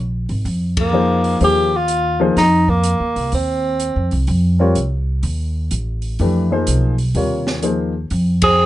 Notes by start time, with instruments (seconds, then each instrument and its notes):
Already playing: upright bass A#1
0.29 upright bass G#1, open hi-hat
0.45 upright bass F2, open hi-hat
0.77 tenor saxophone A#3, kick, ride
0.93 grand piano F3 A#3 D#4 G#4 C5
1.24 open hi-hat
1.40 upright bass D#2, grand piano F3 A#3 D#4 G#4 C5, tenor saxophone G4, open hi-hat
1.76 tenor saxophone F4
1.88 closed hi-hat
2.20 grand piano F3 A#3 D#4 G#4 C5
2.36 upright bass F2, tenor saxophone D#4, snare, open hi-hat
2.68 tenor saxophone A#3, kick
2.83 closed hi-hat
3.00 upright bass D#2
3.16 upright bass C2, open hi-hat
3.32 upright bass D#2, tenor saxophone C4, open hi-hat
3.80 closed hi-hat
3.96 upright bass F2
4.11 upright bass C2, open hi-hat
4.27 upright bass F2, open hi-hat
4.59 grand piano G3 C4 F4 A#4 C#5
4.75 upright bass C2, closed hi-hat
5.23 upright bass D#2, open hi-hat
5.71 upright bass A1, closed hi-hat
6.02 open hi-hat
6.19 upright bass F2, grand piano E3 A3 D4 G4 B4, open hi-hat
6.51 grand piano F3 A#3 D#4 G#4 C5
6.67 upright bass B1, closed hi-hat
6.98 open hi-hat
7.15 upright bass D#2, grand piano C3 G3 F4 A#4 C#5, open hi-hat
7.47 snare
7.62 grand piano F3 A#3 D#4 G#4 C5, closed hi-hat
8.10 upright bass F2, open hi-hat
8.42 tenor saxophone C4 G#4, kick, ride